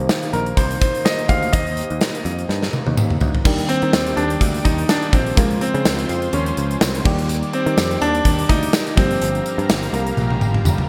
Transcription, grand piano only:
0.33 A#4
0.57 C5
0.81 C5
1.05 D#5
1.29 F5
1.53 D#5
3.69 C4
4.17 D4
4.65 D#4
4.89 D4
5.13 C4
5.37 A#3
5.61 C4
6.34 C#4
7.53 C4
8.02 D4
8.49 D#4
8.97 C4
9.93 A#3

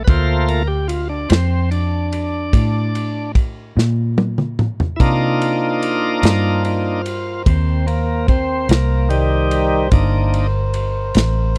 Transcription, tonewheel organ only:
0.04 B4
0.09 A3 A#3 F4 C5
0.49 A#4
0.67 G4
0.88 F4
1.09 D4
1.29 C4
1.71 D4
4.96 A#3 D4 E4
5.01 D#4 F4
6.65 A#3 D4 D#4
7.47 C4
7.87 A#3
8.29 C4
8.69 A#3
9.09 D#3 G3
9.92 A#3 D4 D#4

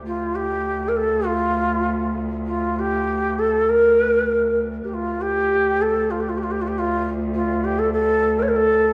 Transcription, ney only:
0.06 F4
0.35 G4
0.88 A#4
0.96 A4
1.25 F4
2.46 F4
2.79 G4
3.38 A4
3.69 A#4
4.84 G4
4.93 F4
5.21 G4
5.81 A4
6.10 F4
6.20 G4
6.29 F4
6.37 G4
6.43 F4
6.51 G4
6.61 F4
6.67 G4
6.78 F4
7.34 F4
7.64 G4
7.78 A4
7.93 A4
8.39 A#4 C#5
8.48 A#4
8.56 A4

